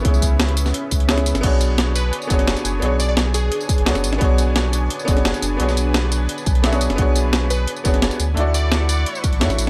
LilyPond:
<<
  \new Staff \with { instrumentName = "Digital synth lead" } { \time 4/4 \key d \lydian \tempo 4 = 173 r1 | r4. b'8 r2 | r8 d''16 d''16 r8 gis'4. r4 | r1 |
r1 | r4. b'8 r2 | r8 d''4 d''4 r4. | }
  \new Staff \with { instrumentName = "Analog synth pad" } { \time 4/4 \key d \lydian << { <cis' e''>1 | <d' gis''>1~ | <d' gis''>1~ | <d' gis''>1~ |
<d' gis''>1~ | <d' gis''>2.~ <d' gis''>8 <e' fis''>8~ | <e' fis''>1 | } \\ { b'1 | cis''1~ | cis''1~ | cis''2 b'2~ |
b'1~ | b'2.~ b'8 cis'''8~ | cis'''1 | } >> }
  \new Staff \with { instrumentName = "Grand piano" } { \time 4/4 \key d \lydian <b cis' e' gis' cis''>2. <b cis' e' gis' cis''>16 r8. | <b d' fis' gis' cis''>2~ <b d' fis' gis' cis''>8 <b d' fis' gis' cis''>4. | <b d' fis' gis' cis''>2. <b d' fis' gis' cis''>16 r8. | <b d' fis' gis' cis''>2~ <b d' fis' gis' cis''>8 <b d' fis' gis' cis''>4. |
<b d' fis' gis' cis''>2. <b d' fis' gis' e''>16 <b d' fis' gis' cis''>8. | <b d' fis' gis' cis''>2~ <b d' fis' gis' cis''>8 <b d' fis' gis' cis''>4 r8 | <a d' e' fis' d''>2. <a d' e' fis' cis''>16 r8. | }
  \new Staff \with { instrumentName = "Sub bass" } { \clef bass \time 4/4 \key d \lydian cis,2 r8 cis,4~ cis,16 gis,,16 | b,,2 r8 fis,,8 fis,,16 r16 fis,,8 | b,,2 r8. fis,,16 d,16 fis,,16 gis,,8 | b,,2 r8 fis,,8 fis,,16 r16 fis,,8 |
b,,2 r8 b,,4~ b,,16 fis,,16 | b,,2 r8 fis,,8 fis,,16 r16 d,8 | d,2 r8. a,,16 fis,16 a,,16 a,,8 | }
  \new DrumStaff \with { instrumentName = "Drums" } \drummode { \time 4/4 <hh bd>16 tamb16 <hh bd tamb>8 <hh sn>16 hh16 <hh tamb>16 <sn tamb>16 hh8 <hh bd tamb>16 hh16 <hh sn>16 <hh sn>16 <hh tamb>16 <hh sn tamb>16 | <cymc hh bd>8 <hh tamb>8 <hh sn>8 <hh tamb>8 hh16 tamb16 <hh bd tamb>16 <hh sn>16 <hh sn>16 <hh tamb>16 <hh tamb>8 | hh8 <hh tamb>8 <hh sn>8 <hh tamb>8 hh16 tamb16 <hh bd tamb>16 hh16 <hh sn>16 <hh sn tamb>16 <hh tamb>16 sn16 | <hh bd>8 <hh tamb>8 <hh sn>8 <hh tamb>8 hh16 tamb16 <hh bd tamb>16 <hh sn>16 <hh sn>16 <hh tamb>16 <hh tamb>8 |
hh16 <sn tamb>16 <hh tamb>8 <hh sn>8 <hh tamb>8 hh16 tamb16 <hh bd tamb>16 hh16 <hh sn>16 <hh sn tamb>16 <hh tamb>16 <hh sn>16 | <hh bd>8 <hh tamb>8 <hh sn>8 <hh tamb>8 hh16 tamb16 <hh bd tamb>16 <hh sn>16 <hh sn>16 <hh tamb>16 <hh tamb>8 | hh8 <hh tamb>8 <hh sn>8 <hh tamb>8 hh16 tamb16 <hh bd tamb>16 hh16 <hh sn>16 <hh sn tamb>16 <hh tamb>8 | }
>>